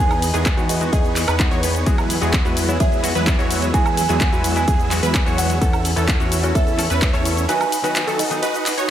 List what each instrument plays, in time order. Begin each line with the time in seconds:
Already playing: analog synth pad B4 D#5 G#5
0.00 analog synth bass E2, clean electric guitar D#3 G#3 B3 G#4, supersaw synth B3 D#4 G#4, synth pluck G#4, analog synth pad C#6
0.11 closed hi-hat, cabasa, high woodblock
0.22 open hi-hat, ride, cabasa
0.34 analog synth bass E2, clean electric guitar D#3 G#3 B3 G#4, supersaw synth B3 D#4 G#4, synth pluck G#4, closed hi-hat, cabasa
0.46 kick, clap, closed hi-hat, ride, cabasa
0.57 analog synth bass E2, clean electric guitar D#3 G#3 B3 C#5, supersaw synth B3 D#4 F#4, synth pluck F#4, closed hi-hat, cabasa
0.69 kalimba D#5, open hi-hat, ride, cabasa
0.80 clean electric guitar D#3 G#3 B3 F#4, closed hi-hat, cabasa
0.92 analog synth bass E2, supersaw synth B3 D#4 G#4, synth pluck G#4, kalimba D#5, kick, closed hi-hat, ride, cabasa
1.05 closed hi-hat, cabasa
1.16 clap, open hi-hat, ride, cabasa
1.28 analog synth bass E2, supersaw synth B3 D#4 B4, synth pluck B4, closed hi-hat, cabasa, high woodblock
1.39 clean electric guitar D#3 G#3 B3 F#4, kick, clap, closed hi-hat, ride, cabasa
1.51 analog synth bass E2, supersaw synth B3 D#4 C#5, synth pluck C#5, closed hi-hat, cabasa
1.62 clean electric guitar D#3 G#3 B3 B4, open hi-hat, ride, cabasa
1.75 closed hi-hat, cabasa
1.86 analog synth bass E2, clean electric guitar E3 G#3 B3 F#4, supersaw synth F#3 G#3 B3 E4 G#4, synth pluck G#4, analog synth pad F#5 G#5 E6, kick, closed hi-hat, ride, cabasa
1.98 closed hi-hat, cabasa, high woodblock
2.10 open hi-hat, ride, cabasa
2.21 analog synth bass E2, clean electric guitar E3 G#3 B3 F#4, supersaw synth F#3 G#3 B3 E4 G#4, synth pluck G#4, closed hi-hat, cabasa
2.33 kick, clap, closed hi-hat, ride, cabasa
2.44 analog synth bass E2, clean electric guitar E3 G#3 B3 B4, supersaw synth F#3 G#3 B3 E4 F#4, synth pluck F#4, closed hi-hat, cabasa
2.57 open hi-hat, ride, cabasa
2.68 clean electric guitar E3 G#3 B3 E4, kalimba C#5, closed hi-hat, cabasa
2.80 analog synth bass E2, supersaw synth F#3 G#3 B3 E4 G#4, synth pluck G#4, kalimba E5, kick, closed hi-hat, ride, cabasa
2.92 closed hi-hat, cabasa
3.03 clean electric guitar E3 G#3 B3 F#4, open hi-hat, ride, cabasa
3.15 analog synth bass E2, supersaw synth F#3 G#3 B3 E4 B4, synth pluck B4, closed hi-hat, cabasa
3.27 kick, clap, closed hi-hat, ride, cabasa
3.38 analog synth bass E2, clean electric guitar E3 G#3 B3 F#4, supersaw synth F#3 G#3 B3 E4 C#5, synth pluck C#5, closed hi-hat, cabasa
3.51 open hi-hat, ride, cabasa
3.62 closed hi-hat, cabasa
3.73 analog synth bass E2, clean electric guitar E3 G#3 B3 F#4, supersaw synth F#3 E4 G#4, synth pluck G#4, kalimba G#5, kick, closed hi-hat, ride, cabasa
3.86 closed hi-hat, cabasa, high woodblock
3.97 kalimba G#5, open hi-hat, ride, cabasa
4.09 analog synth bass E2, clean electric guitar E3 G#3 B3 F#4, supersaw synth F#3 G#3 B3 E4 G#4, synth pluck G#4, closed hi-hat, cabasa
4.21 kick, clap, closed hi-hat, ride, cabasa
4.32 analog synth bass E2, clean electric guitar E3 G#3 B3 B4, supersaw synth F#3 G#3 B3 E4 F#4, synth pluck F#4, closed hi-hat, cabasa
4.44 open hi-hat, ride, cabasa
4.56 clean electric guitar E3 G#3 B3 E4, kalimba G#5, closed hi-hat, cabasa
4.68 analog synth bass E2, supersaw synth F#3 G#3 B3 E4 G#4, synth pluck G#4, kick, closed hi-hat, ride, cabasa
4.80 closed hi-hat, cabasa
4.91 clean electric guitar E3 G#3 B3 F#4, clap, open hi-hat, ride, cabasa
5.03 analog synth bass E2, supersaw synth F#3 G#3 B3 E4 B4, synth pluck B4, closed hi-hat, cabasa
5.15 kick, clap, closed hi-hat, ride, cabasa
5.26 analog synth bass E2, clean electric guitar E3 G#3 B3 F#4, supersaw synth F#3 G#3 B3 E4 C#5, synth pluck C#5, closed hi-hat, cabasa
5.38 kalimba F#5, open hi-hat, ride, cabasa
5.50 closed hi-hat, cabasa
5.61 analog synth bass E2, clean electric guitar E3 A3 C#4 A4, supersaw synth E4, synth pluck A4, analog synth pad C#5 E5 A5 E6, kick, closed hi-hat, ride, cabasa
5.73 closed hi-hat, cabasa, high woodblock
5.85 open hi-hat, ride, cabasa
5.96 analog synth bass E2, clean electric guitar E3 A3 C#4 A4, supersaw synth C#4 E4 A4, synth pluck A4, closed hi-hat, cabasa
6.08 kick, clap, closed hi-hat, ride, cabasa
6.19 analog synth bass E2, clean electric guitar E3 A3 C#4 C#5, supersaw synth C#4 E4 F#4, synth pluck F#4, closed hi-hat, cabasa
6.32 open hi-hat, ride, cabasa
6.43 clean electric guitar E3 A3 C#4 F#4, kalimba C#5, closed hi-hat, cabasa
6.55 analog synth bass E2, supersaw synth C#4 E4 A4, synth pluck A4, kalimba E5, kick, closed hi-hat, ride, cabasa
6.67 closed hi-hat, cabasa
6.78 clean electric guitar E3 A3 C#4 A4, open hi-hat, ride, cabasa
6.90 analog synth bass E2, supersaw synth C#4 E4 B4, synth pluck B4, closed hi-hat, cabasa
7.02 kick, clap, closed hi-hat, ride, cabasa
7.13 analog synth bass E2, clean electric guitar E3 A3 C#4 A4, supersaw synth C#4 E4 C#5, synth pluck C#5, closed hi-hat, cabasa
7.25 open hi-hat, ride, cabasa
7.37 closed hi-hat, cabasa
7.48 clean electric guitar D#3 F#3 B3 F#4, supersaw synth D#4 F#4 B4, synth pluck B4, analog synth pad B4 D#5 F#5 D#6, kalimba G#5, closed hi-hat, ride, cabasa
7.61 closed hi-hat, cabasa, high woodblock
7.72 open hi-hat, ride, cabasa
7.83 clean electric guitar D#3 F#3 B3 F#4, supersaw synth D#4 F#4 B4, synth pluck B4, closed hi-hat, cabasa
7.96 clap, closed hi-hat, ride, cabasa
8.07 clean electric guitar D#3 F#3 B3 A4, supersaw synth D#4 F#4 A4, synth pluck A4, closed hi-hat, cabasa
8.19 kalimba D#5, open hi-hat, ride, cabasa
8.30 clean electric guitar D#3 F#3 B3 D#4, closed hi-hat, cabasa
8.42 supersaw synth D#4 F#4 B4, synth pluck B4, kalimba D#5, closed hi-hat, ride, cabasa
8.54 closed hi-hat, cabasa
8.66 clap, open hi-hat, ride, cabasa
8.77 supersaw synth D#4 F#4 C#5, synth pluck C#5, closed hi-hat, cabasa